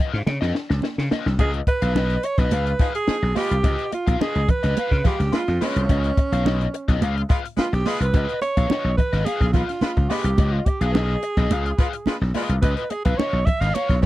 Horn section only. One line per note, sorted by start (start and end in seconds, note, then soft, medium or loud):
2.79 2.89 F3 medium
2.79 2.89 D#4 medium
2.79 2.89 G#4 medium
3.08 3.17 F3 medium
3.08 3.17 D#4 medium
3.08 3.17 G#4 loud
3.36 3.54 G#3 medium
3.36 3.54 F4 medium
3.36 3.54 B4 loud
5.05 5.14 G#3 medium
5.05 5.14 F4 medium
5.05 5.14 B4 medium
5.32 5.42 G#3 medium
5.32 5.42 F4 loud
5.32 5.42 B4 loud
5.61 5.98 G#3 loud
5.61 5.97 F4 medium
5.61 5.97 B4 loud
7.29 7.39 G#3 medium
7.29 7.39 F4 medium
7.29 7.39 B4 medium
7.57 7.67 G#3 medium
7.57 7.67 F4 medium
7.57 7.67 B4 loud
7.85 8.04 G#3 loud
7.85 8.03 F4 medium
7.85 8.04 B4 loud
9.53 9.63 G#3 medium
9.53 9.63 F4 medium
9.53 9.63 B4 medium
9.82 9.91 G#3 medium
9.82 9.91 F4 medium
9.82 9.91 B4 loud
10.10 10.28 G#3 loud
10.10 10.28 F4 medium
10.10 10.28 B4 loud
11.78 11.88 G#3 medium
11.78 11.88 F4 medium
11.78 11.88 B4 loud
12.07 12.16 G#3 medium
12.07 12.16 F4 loud
12.07 12.16 B4 loud
12.34 12.53 G#3 loud
12.34 12.52 F4 medium
12.34 12.53 B4 loud
14.02 14.06 G#3 medium
14.02 14.06 F4 medium
14.02 14.06 B4 medium